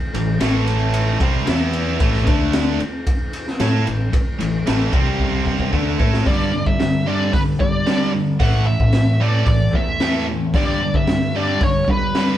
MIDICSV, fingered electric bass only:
0, 0, Header, 1, 3, 480
1, 0, Start_track
1, 0, Tempo, 533333
1, 1805, Time_signature, 4, 2, 24, 8
1, 11138, End_track
2, 0, Start_track
2, 0, Title_t, "Fingered electric bass"
2, 0, Program_c, 0, 33
2, 127, Note_on_c, 0, 33, 76
2, 352, Note_off_c, 0, 33, 0
2, 368, Note_on_c, 0, 33, 91
2, 1051, Note_off_c, 0, 33, 0
2, 1086, Note_on_c, 0, 36, 95
2, 1309, Note_off_c, 0, 36, 0
2, 1333, Note_on_c, 0, 40, 92
2, 1775, Note_off_c, 0, 40, 0
2, 1803, Note_on_c, 0, 33, 86
2, 2027, Note_off_c, 0, 33, 0
2, 2044, Note_on_c, 0, 38, 90
2, 2490, Note_off_c, 0, 38, 0
2, 3242, Note_on_c, 0, 45, 84
2, 3465, Note_off_c, 0, 45, 0
2, 3491, Note_on_c, 0, 33, 74
2, 3709, Note_off_c, 0, 33, 0
2, 3971, Note_on_c, 0, 33, 73
2, 4189, Note_off_c, 0, 33, 0
2, 4213, Note_on_c, 0, 33, 84
2, 4430, Note_off_c, 0, 33, 0
2, 4437, Note_on_c, 0, 36, 92
2, 5123, Note_off_c, 0, 36, 0
2, 5158, Note_on_c, 0, 38, 87
2, 5383, Note_off_c, 0, 38, 0
2, 5397, Note_on_c, 0, 45, 82
2, 5622, Note_off_c, 0, 45, 0
2, 5636, Note_on_c, 0, 43, 81
2, 5980, Note_off_c, 0, 43, 0
2, 5998, Note_on_c, 0, 43, 84
2, 6569, Note_off_c, 0, 43, 0
2, 6602, Note_on_c, 0, 43, 87
2, 6830, Note_off_c, 0, 43, 0
2, 6840, Note_on_c, 0, 55, 81
2, 7528, Note_off_c, 0, 55, 0
2, 7556, Note_on_c, 0, 45, 85
2, 7902, Note_off_c, 0, 45, 0
2, 7920, Note_on_c, 0, 45, 79
2, 8492, Note_off_c, 0, 45, 0
2, 8516, Note_on_c, 0, 45, 83
2, 8759, Note_off_c, 0, 45, 0
2, 8759, Note_on_c, 0, 40, 89
2, 9449, Note_off_c, 0, 40, 0
2, 9483, Note_on_c, 0, 43, 81
2, 9827, Note_off_c, 0, 43, 0
2, 9848, Note_on_c, 0, 43, 90
2, 10418, Note_off_c, 0, 43, 0
2, 10449, Note_on_c, 0, 43, 89
2, 10678, Note_off_c, 0, 43, 0
2, 10688, Note_on_c, 0, 55, 83
2, 11138, Note_off_c, 0, 55, 0
2, 11138, End_track
3, 0, Start_track
3, 0, Title_t, "Muted fingered electric bass strokes"
3, 2528, Note_on_c, 9, 29, 43
3, 2618, Note_off_c, 9, 29, 0
3, 3718, Note_on_c, 9, 29, 37
3, 3808, Note_off_c, 9, 29, 0
3, 11138, End_track
0, 0, End_of_file